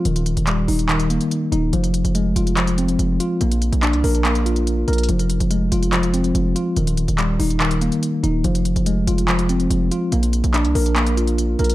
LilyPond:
<<
  \new Staff \with { instrumentName = "Tine electric piano" } { \time 4/4 \key f \dorian \tempo 4 = 143 ees4 g8 ees'8 ees8 bes4 ees'8 | f4 aes8 f'8 f8 c'4 f'8 | bes4 d'8 bes'8 bes8 f'4 bes'8 | f4 aes8 f'8 f8 c'4 f'8 |
ees4 g8 ees'8 ees8 bes4 ees'8 | f4 aes8 f'8 f8 c'4 f'8 | bes4 d'8 bes'8 bes8 f'4 bes'8 | }
  \new Staff \with { instrumentName = "808-style bass" } { \clef bass \time 4/4 \key f \dorian ees,,8. ees,,8. ees,,4~ ees,,16 r8. ees,,8 | f,,8. f,,8. f,,4. f,,8 r8 | bes,,8. bes,,8 c,16 bes,,2 bes,,8 | f,,8. f,,8. f,,4. f,,8 r8 |
ees,,8. ees,,8. ees,,4~ ees,,16 r8. ees,,8 | f,,8. f,,8. f,,4. f,,8 r8 | bes,,8. bes,,8 c,16 bes,,2 bes,,8 | }
  \new DrumStaff \with { instrumentName = "Drums" } \drummode { \time 4/4 hh16 hh16 hh16 hh16 <hc hh>8 hho16 hh16 <hc hh>16 hh16 hh16 hh16 hh8 hh8 | hh16 hh16 hh16 hh16 hh8 hh16 hh16 <hc hh>16 hh16 hh16 hh16 hh8 hh8 | hh16 hh16 hh16 hh16 <hc hh>16 hh16 hho16 hh16 <hc hh>16 hh16 hh16 hh16 hh8 hh32 hh32 hh32 hh32 | hh16 hh16 hh16 hh16 hh8 hh16 hh16 <hc hh>16 hh16 hh16 hh16 hh8 hh8 |
hh16 hh16 hh16 hh16 <hc hh>8 hho16 hh16 <hc hh>16 hh16 hh16 hh16 hh8 hh8 | hh16 hh16 hh16 hh16 hh8 hh16 hh16 <hc hh>16 hh16 hh16 hh16 hh8 hh8 | hh16 hh16 hh16 hh16 <hc hh>16 hh16 hho16 hh16 <hc hh>16 hh16 hh16 hh16 hh8 hh32 hh32 hh16 | }
>>